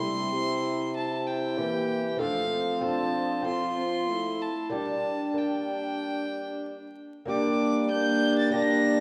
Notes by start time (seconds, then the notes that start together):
Already playing: C3 C4 E4 G4 C6
0.02 G3
0.34 C4 E4
0.95 E4 A5
1.27 G5
1.57 E3 A#3 G4
2.17 F3 A3 C4 D4 F4 A4
2.21 F3 F5
2.51 C4
2.81 C4 D4 F4 A4
2.85 A5
3.42 C4 F4 A4
3.47 C4 C6
3.78 C4
4.10 A3 E4
4.42 A5
4.69 G3 A#3 D4 G4 A5
4.73 G3 D4
5.34 A#3 D4 G4 G5
7.25 G3 A#3 D4 G4 D6
7.91 A#3 D4 G6
8.39 A6
8.51 A#3 D4 G4 A#6
8.55 A#3 D4